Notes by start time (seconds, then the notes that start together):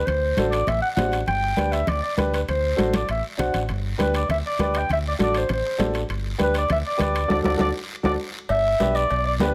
0.06 D2 C5, high conga, low conga, high timbale, long guiro
0.37 A1 D4 F#4 A4, high conga, high timbale, short guiro
0.50 D5, high timbale, short guiro
0.67 A1 E5, high conga, low conga, high timbale, long guiro
0.82 F#5
0.96 A1 D4 F#4 C5 F#5, high conga, low conga, high timbale, low timbale, short guiro
1.12 high timbale, short guiro
1.26 G1 G5, high conga, low conga, high timbale, long guiro
1.57 D2 D4 G4 B4, high conga, high timbale, short guiro
1.72 E5, high timbale, short guiro
1.87 D2 D5, high conga, low conga, high timbale, long guiro
2.03 D5
2.17 D2 D4 G4 B4, high conga, low conga, high timbale, short guiro
2.34 B4, high timbale, short guiro
2.48 D2 C5, high conga, low conga, high timbale, long guiro
2.76 A1 D4 F#4 A4, high conga, high timbale, short guiro
2.94 D5, high conga, high timbale, short guiro
3.08 A1 E5, high timbale, long guiro
3.37 B1 D4 F#4 C5 F#5, low conga, high timbale, short guiro
3.54 A1, low conga, high timbale, short guiro
3.69 G1, high conga, low conga, high timbale, long guiro
3.98 D2 D4 G4 B4, high conga, high timbale, short guiro
4.14 D5, high timbale, short guiro
4.29 D2 E5, high conga, low conga, high timbale, long guiro
4.46 D5
4.59 D2 D4 G4 B4, high conga, low conga, high timbale, short guiro
4.63 D5
4.74 G5, high timbale, short guiro
4.89 D2 E5, high conga, low conga, high timbale, long guiro
5.08 D5
5.19 A1 D4 F#4 A4, high conga, high timbale, short guiro
5.23 D5
5.35 C5, high timbale, short guiro
5.49 A1 C5, high conga, low conga, high timbale, long guiro
5.78 A1 D4 F#4 A4, high conga, high timbale, low timbale, short guiro
5.94 high timbale, short guiro
6.09 G1, high conga, high timbale, long guiro
6.38 D2 D4 G4 B4, high conga, high timbale, short guiro
6.43 B4
6.54 D5, high timbale, short guiro
6.69 D2 E5, high conga, low conga, high timbale, long guiro
6.87 D5
6.97 D2 D4 G4 B4, high conga, low conga, high timbale, short guiro
7.02 D5
7.15 high timbale, short guiro
7.28 D2 D4 F#4 A4 D5, high conga, high timbale, long guiro
7.43 D2 D4 F#4 A4 D5, high conga, high timbale, long guiro
7.57 D2 D4 F#4 A4 D5, high conga, high timbale, long guiro
8.03 D2 D4 F#4 A4 D5, high conga, high timbale, long guiro
8.49 G1 E5, cowbell, high conga, long guiro
8.79 B1 D4 G4 B4, cowbell, high conga, short guiro
8.95 D5, short guiro
9.10 B1, cowbell, high conga, long guiro
9.25 D5
9.40 D2 D4 G4 B4, cowbell, high conga, low timbale, short guiro